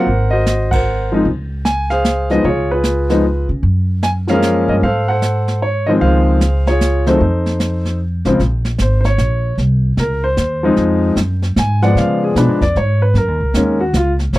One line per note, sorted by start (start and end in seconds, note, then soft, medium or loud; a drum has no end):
0.00 0.43 A#4 medium
0.00 0.31 C5 medium
0.00 0.33 F#5 medium
0.07 1.22 G#1 medium
0.07 brush sweep soft
0.30 0.83 F#4 medium
0.30 0.72 C5 medium
0.30 0.68 D#5 medium
0.46 snare medium
0.46 hi-hat pedal medium
0.71 1.23 A#4 medium
0.71 1.23 C5 medium
0.71 1.08 F#5 medium
0.71 kick medium
0.71 ride medium
1.12 1.25 F3 medium
1.12 1.25 G#3 medium
1.12 1.25 C4 medium
1.12 1.26 D#4 medium
1.25 2.40 C#2 medium
1.25 brush sweep soft
1.65 1.91 G#5 medium
1.65 snare medium
1.65 hi-hat pedal medium
1.90 2.41 G#4 medium
1.90 2.42 C5 medium
1.90 2.27 F5 loud
1.90 snare soft
2.05 snare medium
2.05 hi-hat pedal soft
2.30 2.43 F3 medium
2.30 2.43 G#3 medium
2.30 2.44 B3 medium
2.30 2.44 D#4 medium
2.30 2.45 D#5 medium
2.30 snare soft
2.43 3.45 C#2 medium
2.43 2.71 F4 medium
2.43 2.71 G#4 medium
2.43 2.71 C#5 medium
2.43 brush sweep soft
2.71 3.47 F4 medium
2.71 3.47 G#4 medium
2.71 3.46 B4 medium
2.84 snare medium
2.84 hi-hat pedal medium
3.09 3.23 F3 medium
3.09 3.23 G#3 medium
3.09 3.23 B3 medium
3.09 3.23 D#4 medium
3.09 snare soft
3.49 3.62 C#3 medium
3.63 4.64 F#2 medium
3.63 brush sweep soft
4.03 4.09 G#5 loud
4.03 snare medium
4.03 hi-hat pedal medium
4.27 4.79 F3 medium
4.27 4.80 G#3 medium
4.27 4.80 A#3 medium
4.27 4.80 C#4 medium
4.27 4.80 G#4 medium
4.27 4.80 A#4 medium
4.27 4.70 F5 medium
4.27 snare soft
4.42 snare medium
4.42 hi-hat pedal medium
4.68 4.82 G2 medium
4.68 4.74 D#5 medium
4.82 5.98 G#2 medium
4.82 5.09 A4 medium
4.82 5.08 C5 medium
4.82 5.09 F5 medium
4.82 brush sweep soft
5.08 5.59 A4 medium
5.08 5.59 C5 medium
5.08 5.58 F#5 medium
5.22 snare medium
5.22 hi-hat pedal soft
5.48 snare soft
5.62 5.86 C#5 medium
5.86 6.38 D#3 medium
5.86 6.39 F3 medium
5.86 6.39 G#3 medium
5.86 6.39 C4 medium
5.86 5.91 D#5 medium
6.01 7.16 C#2 medium
6.01 6.63 G#4 medium
6.01 6.63 C5 medium
6.01 6.68 F5 medium
6.01 brush sweep soft
6.41 snare medium
6.41 hi-hat pedal medium
6.67 7.18 F4 medium
6.67 7.18 G#4 medium
6.67 7.04 C#5 medium
6.67 snare soft
6.81 snare medium
6.81 hi-hat pedal medium
7.06 7.19 D#3 medium
7.06 7.19 F#3 medium
7.06 7.20 A3 medium
7.06 7.20 C4 medium
7.06 7.97 D#4 soft
7.06 7.97 A4 soft
7.06 7.96 C5 medium
7.06 snare soft
7.20 8.21 F2 medium
7.20 brush sweep soft
7.46 snare soft
7.60 snare medium
7.60 hi-hat pedal medium
7.85 snare soft
8.25 8.39 A1 medium
8.25 8.38 C#3 medium
8.25 8.38 F3 medium
8.25 8.39 G#3 medium
8.25 8.39 C4 medium
8.25 snare soft
8.39 8.78 A#1 medium
8.39 brush sweep soft
8.39 snare soft
8.65 snare soft
8.78 9.18 G#1 medium
8.78 8.99 C5 medium
8.78 snare medium
8.78 hi-hat pedal medium
9.01 9.03 C5 medium
9.01 snare soft
9.05 9.55 C#5 medium
9.18 9.57 A#1 medium
9.18 snare medium
9.18 hi-hat pedal soft
9.58 9.96 C2 medium
9.58 brush sweep soft
9.58 snare soft
9.97 10.36 C#2 medium
9.97 10.23 A#4 medium
9.97 snare soft
10.24 10.74 C5 medium
10.37 10.76 D#2 medium
10.37 snare soft
10.37 hi-hat pedal medium
10.63 11.14 F3 medium
10.63 11.15 G#3 medium
10.63 11.15 C4 medium
10.63 11.15 D#4 medium
10.76 11.16 F2 medium
10.76 brush sweep soft
10.76 snare soft
11.16 11.55 F#2 medium
11.16 snare medium
11.16 hi-hat pedal medium
11.42 snare soft
11.56 11.95 G#2 medium
11.56 11.83 G#5 medium
11.56 snare medium
11.56 hi-hat pedal medium
11.82 12.33 F3 medium
11.82 12.34 G#3 medium
11.82 12.34 B3 medium
11.82 12.34 D5 medium
11.82 11.96 F#5 medium
11.82 snare soft
11.95 12.34 C#3 medium
11.95 12.22 F5 medium
11.95 brush sweep soft
11.95 snare soft
12.24 12.37 G#4 medium
12.35 12.49 B2 medium
12.35 12.59 F3 medium
12.35 12.59 G#3 medium
12.35 12.59 B3 soft
12.35 12.60 D4 medium
12.35 12.61 B4 medium
12.35 snare medium
12.35 hi-hat pedal medium
12.49 12.61 G#2 soft
12.61 12.74 F2 medium
12.61 12.76 D5 medium
12.61 kick soft
12.61 snare soft
12.76 13.13 G#2 medium
12.76 13.01 C#5 medium
12.76 snare soft
13.02 13.15 B4 medium
13.14 13.28 F#2 medium
13.14 13.77 A#4 medium
13.14 brush sweep soft
13.14 snare soft
13.28 13.40 D#2 medium
13.40 13.53 C#2 medium
13.54 13.93 D#2 medium
13.54 13.78 D#3 medium
13.54 13.78 G#3 medium
13.54 13.78 A#3 soft
13.54 13.79 C#4 medium
13.54 snare medium
13.54 hi-hat pedal medium
13.80 13.94 F#4 medium
13.93 14.32 C#2 medium
13.93 14.11 F4 medium
13.93 snare medium
13.93 hi-hat pedal medium
14.19 snare soft
14.33 14.39 A1 medium
14.33 14.39 C#5 medium
14.33 brush sweep soft
14.33 snare soft